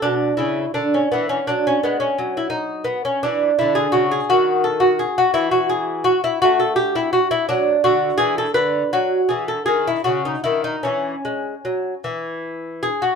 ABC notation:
X:1
M:6/8
L:1/16
Q:3/8=56
K:Emix
V:1 name="Lute"
D2 E2 D C B, C D C B, C- | C E ^D2 B, C =D2 E G F G | F2 A F G F E F G2 F E | F A =G E F E D2 F2 ^G A |
B2 F2 G A G E F ^D E D | C6 z4 G F |]
V:2 name="Lute" clef=bass
B,,2 C,2 D,2 E,2 F,2 G,2 | F,6 E,2 D,2 C,2 | ^D,6 E,6 | A,6 F,2 D,2 E,2 |
D,2 F,2 E,2 ^D,2 C,2 D,2 | E,2 G,2 F,2 E,6 |]